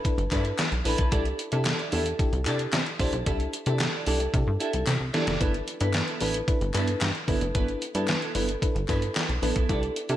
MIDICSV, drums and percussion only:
0, 0, Header, 1, 2, 480
1, 0, Start_track
1, 0, Key_signature, 1, "major"
1, 0, Tempo, 535714
1, 1005, Time_signature, 4, 2, 24, 8
1, 9110, End_track
2, 0, Start_track
2, 0, Title_t, "Drums"
2, 44, Note_on_c, 9, 36, 108
2, 46, Note_on_c, 9, 42, 85
2, 134, Note_off_c, 9, 36, 0
2, 136, Note_off_c, 9, 42, 0
2, 164, Note_on_c, 9, 42, 36
2, 254, Note_off_c, 9, 42, 0
2, 279, Note_on_c, 9, 39, 72
2, 285, Note_on_c, 9, 36, 87
2, 285, Note_on_c, 9, 42, 84
2, 369, Note_off_c, 9, 39, 0
2, 374, Note_off_c, 9, 36, 0
2, 374, Note_off_c, 9, 42, 0
2, 401, Note_on_c, 9, 42, 50
2, 491, Note_off_c, 9, 42, 0
2, 523, Note_on_c, 9, 39, 94
2, 525, Note_on_c, 9, 42, 90
2, 527, Note_on_c, 9, 38, 107
2, 536, Note_off_c, 9, 39, 0
2, 536, Note_on_c, 9, 39, 84
2, 615, Note_off_c, 9, 42, 0
2, 617, Note_off_c, 9, 38, 0
2, 625, Note_off_c, 9, 39, 0
2, 645, Note_on_c, 9, 42, 37
2, 735, Note_off_c, 9, 42, 0
2, 764, Note_on_c, 9, 46, 69
2, 854, Note_off_c, 9, 46, 0
2, 880, Note_on_c, 9, 42, 54
2, 883, Note_on_c, 9, 36, 76
2, 970, Note_off_c, 9, 42, 0
2, 973, Note_off_c, 9, 36, 0
2, 1003, Note_on_c, 9, 42, 96
2, 1004, Note_on_c, 9, 36, 94
2, 1093, Note_off_c, 9, 42, 0
2, 1094, Note_off_c, 9, 36, 0
2, 1124, Note_on_c, 9, 42, 37
2, 1214, Note_off_c, 9, 42, 0
2, 1246, Note_on_c, 9, 42, 81
2, 1335, Note_off_c, 9, 42, 0
2, 1360, Note_on_c, 9, 42, 60
2, 1450, Note_off_c, 9, 42, 0
2, 1478, Note_on_c, 9, 39, 91
2, 1484, Note_on_c, 9, 42, 72
2, 1487, Note_on_c, 9, 38, 113
2, 1496, Note_off_c, 9, 39, 0
2, 1496, Note_on_c, 9, 39, 90
2, 1573, Note_off_c, 9, 42, 0
2, 1577, Note_off_c, 9, 38, 0
2, 1585, Note_off_c, 9, 39, 0
2, 1605, Note_on_c, 9, 42, 36
2, 1695, Note_off_c, 9, 42, 0
2, 1721, Note_on_c, 9, 46, 81
2, 1811, Note_off_c, 9, 46, 0
2, 1843, Note_on_c, 9, 42, 63
2, 1933, Note_off_c, 9, 42, 0
2, 1965, Note_on_c, 9, 36, 114
2, 1967, Note_on_c, 9, 42, 84
2, 2054, Note_off_c, 9, 36, 0
2, 2057, Note_off_c, 9, 42, 0
2, 2086, Note_on_c, 9, 42, 37
2, 2175, Note_off_c, 9, 42, 0
2, 2199, Note_on_c, 9, 39, 81
2, 2206, Note_on_c, 9, 42, 82
2, 2288, Note_off_c, 9, 39, 0
2, 2296, Note_off_c, 9, 42, 0
2, 2322, Note_on_c, 9, 42, 48
2, 2412, Note_off_c, 9, 42, 0
2, 2443, Note_on_c, 9, 39, 87
2, 2444, Note_on_c, 9, 42, 85
2, 2446, Note_on_c, 9, 38, 115
2, 2455, Note_off_c, 9, 39, 0
2, 2455, Note_on_c, 9, 39, 89
2, 2534, Note_off_c, 9, 42, 0
2, 2536, Note_off_c, 9, 38, 0
2, 2544, Note_off_c, 9, 39, 0
2, 2566, Note_on_c, 9, 42, 37
2, 2655, Note_off_c, 9, 42, 0
2, 2683, Note_on_c, 9, 36, 80
2, 2685, Note_on_c, 9, 46, 66
2, 2773, Note_off_c, 9, 36, 0
2, 2774, Note_off_c, 9, 46, 0
2, 2802, Note_on_c, 9, 42, 55
2, 2892, Note_off_c, 9, 42, 0
2, 2925, Note_on_c, 9, 36, 94
2, 2925, Note_on_c, 9, 42, 93
2, 3014, Note_off_c, 9, 42, 0
2, 3015, Note_off_c, 9, 36, 0
2, 3045, Note_on_c, 9, 42, 37
2, 3135, Note_off_c, 9, 42, 0
2, 3167, Note_on_c, 9, 42, 89
2, 3257, Note_off_c, 9, 42, 0
2, 3281, Note_on_c, 9, 42, 59
2, 3370, Note_off_c, 9, 42, 0
2, 3398, Note_on_c, 9, 39, 88
2, 3406, Note_on_c, 9, 42, 76
2, 3409, Note_on_c, 9, 38, 113
2, 3418, Note_off_c, 9, 39, 0
2, 3418, Note_on_c, 9, 39, 90
2, 3495, Note_off_c, 9, 42, 0
2, 3499, Note_off_c, 9, 38, 0
2, 3507, Note_off_c, 9, 39, 0
2, 3642, Note_on_c, 9, 46, 84
2, 3732, Note_off_c, 9, 46, 0
2, 3765, Note_on_c, 9, 42, 60
2, 3855, Note_off_c, 9, 42, 0
2, 3886, Note_on_c, 9, 36, 107
2, 3889, Note_on_c, 9, 42, 87
2, 3975, Note_off_c, 9, 36, 0
2, 3978, Note_off_c, 9, 42, 0
2, 4126, Note_on_c, 9, 42, 82
2, 4216, Note_off_c, 9, 42, 0
2, 4242, Note_on_c, 9, 42, 50
2, 4332, Note_off_c, 9, 42, 0
2, 4361, Note_on_c, 9, 39, 90
2, 4366, Note_on_c, 9, 42, 81
2, 4368, Note_on_c, 9, 38, 58
2, 4451, Note_off_c, 9, 39, 0
2, 4455, Note_off_c, 9, 42, 0
2, 4457, Note_off_c, 9, 38, 0
2, 4606, Note_on_c, 9, 42, 67
2, 4608, Note_on_c, 9, 38, 89
2, 4695, Note_off_c, 9, 42, 0
2, 4698, Note_off_c, 9, 38, 0
2, 4724, Note_on_c, 9, 42, 52
2, 4729, Note_on_c, 9, 38, 87
2, 4813, Note_off_c, 9, 42, 0
2, 4819, Note_off_c, 9, 38, 0
2, 4845, Note_on_c, 9, 36, 97
2, 4845, Note_on_c, 9, 42, 92
2, 4935, Note_off_c, 9, 36, 0
2, 4935, Note_off_c, 9, 42, 0
2, 4967, Note_on_c, 9, 42, 37
2, 5057, Note_off_c, 9, 42, 0
2, 5086, Note_on_c, 9, 42, 82
2, 5176, Note_off_c, 9, 42, 0
2, 5202, Note_on_c, 9, 42, 57
2, 5292, Note_off_c, 9, 42, 0
2, 5319, Note_on_c, 9, 39, 93
2, 5325, Note_on_c, 9, 42, 80
2, 5328, Note_on_c, 9, 38, 107
2, 5337, Note_off_c, 9, 39, 0
2, 5337, Note_on_c, 9, 39, 90
2, 5414, Note_off_c, 9, 42, 0
2, 5418, Note_off_c, 9, 38, 0
2, 5426, Note_off_c, 9, 39, 0
2, 5445, Note_on_c, 9, 42, 37
2, 5535, Note_off_c, 9, 42, 0
2, 5560, Note_on_c, 9, 46, 80
2, 5650, Note_off_c, 9, 46, 0
2, 5683, Note_on_c, 9, 42, 59
2, 5773, Note_off_c, 9, 42, 0
2, 5805, Note_on_c, 9, 36, 114
2, 5808, Note_on_c, 9, 42, 84
2, 5895, Note_off_c, 9, 36, 0
2, 5897, Note_off_c, 9, 42, 0
2, 5925, Note_on_c, 9, 42, 38
2, 6015, Note_off_c, 9, 42, 0
2, 6039, Note_on_c, 9, 39, 74
2, 6045, Note_on_c, 9, 42, 81
2, 6129, Note_off_c, 9, 39, 0
2, 6134, Note_off_c, 9, 42, 0
2, 6160, Note_on_c, 9, 42, 50
2, 6250, Note_off_c, 9, 42, 0
2, 6282, Note_on_c, 9, 39, 90
2, 6283, Note_on_c, 9, 42, 87
2, 6286, Note_on_c, 9, 38, 113
2, 6294, Note_off_c, 9, 39, 0
2, 6294, Note_on_c, 9, 39, 87
2, 6373, Note_off_c, 9, 42, 0
2, 6375, Note_off_c, 9, 38, 0
2, 6384, Note_off_c, 9, 39, 0
2, 6405, Note_on_c, 9, 42, 37
2, 6494, Note_off_c, 9, 42, 0
2, 6523, Note_on_c, 9, 36, 83
2, 6524, Note_on_c, 9, 46, 70
2, 6612, Note_off_c, 9, 36, 0
2, 6613, Note_off_c, 9, 46, 0
2, 6642, Note_on_c, 9, 42, 54
2, 6732, Note_off_c, 9, 42, 0
2, 6763, Note_on_c, 9, 42, 93
2, 6764, Note_on_c, 9, 36, 104
2, 6853, Note_off_c, 9, 42, 0
2, 6854, Note_off_c, 9, 36, 0
2, 6885, Note_on_c, 9, 42, 37
2, 6975, Note_off_c, 9, 42, 0
2, 7006, Note_on_c, 9, 42, 82
2, 7096, Note_off_c, 9, 42, 0
2, 7121, Note_on_c, 9, 42, 58
2, 7211, Note_off_c, 9, 42, 0
2, 7238, Note_on_c, 9, 39, 86
2, 7245, Note_on_c, 9, 42, 75
2, 7249, Note_on_c, 9, 38, 111
2, 7257, Note_off_c, 9, 39, 0
2, 7257, Note_on_c, 9, 39, 89
2, 7335, Note_off_c, 9, 42, 0
2, 7338, Note_off_c, 9, 38, 0
2, 7347, Note_off_c, 9, 39, 0
2, 7367, Note_on_c, 9, 42, 37
2, 7456, Note_off_c, 9, 42, 0
2, 7481, Note_on_c, 9, 46, 87
2, 7571, Note_off_c, 9, 46, 0
2, 7604, Note_on_c, 9, 42, 63
2, 7694, Note_off_c, 9, 42, 0
2, 7725, Note_on_c, 9, 36, 105
2, 7729, Note_on_c, 9, 42, 88
2, 7815, Note_off_c, 9, 36, 0
2, 7819, Note_off_c, 9, 42, 0
2, 7847, Note_on_c, 9, 42, 34
2, 7937, Note_off_c, 9, 42, 0
2, 7959, Note_on_c, 9, 39, 75
2, 7966, Note_on_c, 9, 36, 89
2, 7967, Note_on_c, 9, 42, 87
2, 8049, Note_off_c, 9, 39, 0
2, 8055, Note_off_c, 9, 36, 0
2, 8057, Note_off_c, 9, 42, 0
2, 8084, Note_on_c, 9, 42, 53
2, 8173, Note_off_c, 9, 42, 0
2, 8202, Note_on_c, 9, 39, 85
2, 8208, Note_on_c, 9, 42, 84
2, 8210, Note_on_c, 9, 38, 104
2, 8218, Note_off_c, 9, 39, 0
2, 8218, Note_on_c, 9, 39, 90
2, 8297, Note_off_c, 9, 42, 0
2, 8299, Note_off_c, 9, 38, 0
2, 8308, Note_off_c, 9, 39, 0
2, 8328, Note_on_c, 9, 42, 36
2, 8417, Note_off_c, 9, 42, 0
2, 8447, Note_on_c, 9, 46, 68
2, 8537, Note_off_c, 9, 46, 0
2, 8564, Note_on_c, 9, 42, 55
2, 8565, Note_on_c, 9, 36, 80
2, 8653, Note_off_c, 9, 42, 0
2, 8654, Note_off_c, 9, 36, 0
2, 8686, Note_on_c, 9, 36, 95
2, 8686, Note_on_c, 9, 42, 91
2, 8775, Note_off_c, 9, 36, 0
2, 8776, Note_off_c, 9, 42, 0
2, 8807, Note_on_c, 9, 42, 37
2, 8896, Note_off_c, 9, 42, 0
2, 8928, Note_on_c, 9, 42, 86
2, 9017, Note_off_c, 9, 42, 0
2, 9042, Note_on_c, 9, 42, 63
2, 9110, Note_off_c, 9, 42, 0
2, 9110, End_track
0, 0, End_of_file